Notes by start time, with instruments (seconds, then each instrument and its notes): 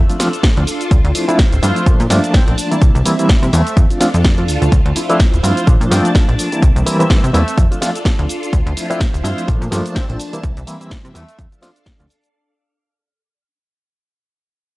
Already playing: string machine D4 F4 A4
0.09 reed electric piano F3 A3 C4 D4 F4, closed hi-hat, shaker
0.19 reed electric piano F3 A3 C4 D4 F4, snare, open hi-hat, shaker
0.33 closed hi-hat, shaker
0.43 kick, snare, closed hi-hat, shaker
0.56 analog synth bass D2, reed electric piano F3 A3 C4 D4 F4, closed hi-hat
0.67 open hi-hat, shaker
0.81 closed hi-hat, shaker
0.91 analog synth bass D2, string machine E4 C5, kick, closed hi-hat, shaker
1.04 analog synth bass D2, closed hi-hat
1.14 reed electric piano F3 A3 C4 D4 E4, open hi-hat, shaker
1.28 reed electric piano F3 A3 C4 D4 E4, closed hi-hat, shaker
1.39 kick, snare, closed hi-hat, shaker
1.52 analog synth bass D1, closed hi-hat, shaker
1.62 analog synth bass G2, reed electric piano F3 A3 C4 D4 E4, horn section F4, open hi-hat, shaker
1.76 closed hi-hat, shaker
1.86 analog synth bass A#1, reed electric piano F3 A3 A#3 D4 F4, string machine D4 A5, kick, closed hi-hat, shaker
2.00 analog synth bass A#2, closed hi-hat, shaker
2.09 analog synth bass G2, reed electric piano F3 A3 A#3 D4 F4, snare, open hi-hat, shaker
2.24 closed hi-hat, shaker
2.34 horn section C4, kick, snare, closed hi-hat, shaker
2.47 analog synth bass A#1, horn section C4, closed hi-hat
2.58 open hi-hat, shaker
2.71 reed electric piano E3 G3 A#3 C4 E4, closed hi-hat, shaker
2.82 analog synth bass C2, string machine C4 E5, kick, closed hi-hat, shaker
2.95 analog synth bass C2, closed hi-hat, shaker
3.05 reed electric piano E3 G3 A#3 C4 E4, open hi-hat, shaker
3.19 reed electric piano E3 G3 A#3 C4 E4, closed hi-hat, shaker
3.29 kick, snare, closed hi-hat, shaker
3.42 analog synth bass C3, closed hi-hat, shaker
3.53 analog synth bass E2, reed electric piano E3 G3 A#3 C4 E4, horn section A3, open hi-hat, shaker
3.67 closed hi-hat, shaker
3.77 analog synth bass F2, string machine D4 F4 A4, kick, closed hi-hat, shaker
3.90 reed electric piano F3 A3 C4 D4 F4, closed hi-hat, shaker
4.00 reed electric piano F3 A3 C4 D4 F4, snare, open hi-hat, shaker
4.14 analog synth bass F2, closed hi-hat, shaker
4.24 kick, snare, closed hi-hat, shaker
4.38 reed electric piano F3 A3 C4 D4 F4, closed hi-hat
4.48 analog synth bass D2, open hi-hat, shaker
4.62 analog synth bass D2, closed hi-hat, shaker
4.72 analog synth bass D2, string machine E4 C5, kick, closed hi-hat, shaker
4.86 analog synth bass D2, closed hi-hat
4.95 reed electric piano F3 A3 C4 D4 E4, open hi-hat, shaker
5.09 reed electric piano F3 A3 C4 D4 E4, closed hi-hat, shaker
5.20 kick, snare, closed hi-hat, shaker
5.33 analog synth bass D1, closed hi-hat, shaker
5.43 analog synth bass G2, reed electric piano F3 A3 C4 D4 E4, horn section F4, open hi-hat, shaker
5.57 closed hi-hat, shaker
5.67 analog synth bass A#1, reed electric piano F3 A3 A#3 D4 F4, string machine D4 A5, kick, closed hi-hat, shaker
5.81 analog synth bass A#2, closed hi-hat, shaker
5.91 analog synth bass G2, reed electric piano F3 A3 A#3 D4 F4, horn section C4, snare, open hi-hat, shaker
6.05 closed hi-hat, shaker
6.15 kick, snare, closed hi-hat, shaker
6.29 analog synth bass A#1, closed hi-hat
6.39 open hi-hat, shaker
6.52 reed electric piano E3 G3 A#3 C4 E4, closed hi-hat, shaker
6.62 analog synth bass C2, string machine C4 E5, kick, closed hi-hat, shaker
6.76 analog synth bass C2, closed hi-hat, shaker
6.86 reed electric piano E3 G3 A#3 C4 E4, open hi-hat, shaker
6.99 reed electric piano E3 G3 A#3 C4 E4, closed hi-hat, shaker
7.10 kick, snare, closed hi-hat, shaker
7.24 analog synth bass C3, closed hi-hat, shaker
7.33 analog synth bass E2, reed electric piano E3 G3 A#3 C4 E4, horn section A3, open hi-hat, shaker
7.48 closed hi-hat, shaker
7.57 analog synth bass F2, string machine D4 F4 A4, kick, closed hi-hat, shaker
7.71 reed electric piano F3 A3 C4 D4 F4, closed hi-hat, shaker
7.81 reed electric piano F3 A3 C4 D4 F4, snare, open hi-hat, shaker
7.95 closed hi-hat, shaker
8.05 kick, snare, closed hi-hat, shaker
8.18 analog synth bass D2, reed electric piano F3 A3 C4 D4 F4, closed hi-hat
8.29 open hi-hat, shaker
8.43 closed hi-hat, shaker
8.52 analog synth bass D2, string machine E4 C5, kick, closed hi-hat, shaker
8.66 analog synth bass D2, closed hi-hat
8.76 reed electric piano F3 A3 C4 D4 E4, open hi-hat, shaker
8.90 reed electric piano F3 A3 C4 D4 E4, closed hi-hat, shaker
9.01 kick, snare, closed hi-hat, shaker
9.14 analog synth bass D1, closed hi-hat, shaker
9.24 analog synth bass G2, reed electric piano F3 A3 C4 D4 E4, horn section F4, open hi-hat, shaker
9.38 closed hi-hat, shaker
9.47 analog synth bass A#1, reed electric piano F3 A3 A#3 D4 F4, string machine D4 A5, kick, closed hi-hat, shaker
9.62 analog synth bass A#2, closed hi-hat, shaker
9.71 analog synth bass G2, reed electric piano F3 A3 A#3 D4 F4, snare, open hi-hat, shaker
9.86 closed hi-hat, shaker
9.95 horn section C4, kick, snare, closed hi-hat, shaker
10.09 analog synth bass A#1, horn section C4, closed hi-hat
10.20 open hi-hat, shaker
10.33 reed electric piano E3 G3 A#3 C4 E4, closed hi-hat, shaker
10.43 analog synth bass C2, string machine C4 E5, kick, closed hi-hat, shaker
10.57 analog synth bass C2, closed hi-hat, shaker
10.67 reed electric piano E3 G3 A#3 C4 E4, open hi-hat, shaker
10.80 reed electric piano E3 G3 A#3 C4 E4, closed hi-hat, shaker
10.91 kick, snare, closed hi-hat, shaker
11.05 analog synth bass C3, closed hi-hat, shaker
11.14 analog synth bass E2, reed electric piano E3 G3 A#3 C4 E4, horn section A3, open hi-hat, shaker
11.29 closed hi-hat, shaker
11.38 analog synth bass F2, string machine D4 A4 F5, kick, closed hi-hat, shaker
11.51 reed electric piano F3 A3 C4 D4 F4, closed hi-hat, shaker
11.62 reed electric piano F3 A3 C4 D4 F4, snare, open hi-hat, shaker
11.76 closed hi-hat, shaker
11.86 kick, snare, closed hi-hat, shaker
11.99 analog synth bass D2, reed electric piano F3 A3 C4 D4 F4, closed hi-hat, shaker
12.10 open hi-hat, shaker
12.24 closed hi-hat, shaker